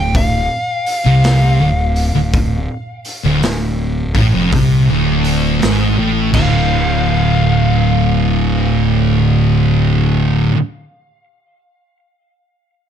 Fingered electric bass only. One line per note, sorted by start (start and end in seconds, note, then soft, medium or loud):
0.00 0.47 D1 medium
1.06 1.56 C2 medium
1.60 2.11 D1 medium
2.15 2.66 D1 medium
3.25 3.42 D1 medium
3.44 4.12 D1 medium
4.15 4.33 A1 medium
4.34 4.52 F1 medium
4.53 4.86 C2 medium
4.89 5.59 D1 medium
5.63 5.96 G#1 medium
5.99 6.32 A1 medium
6.34 10.50 D1 loud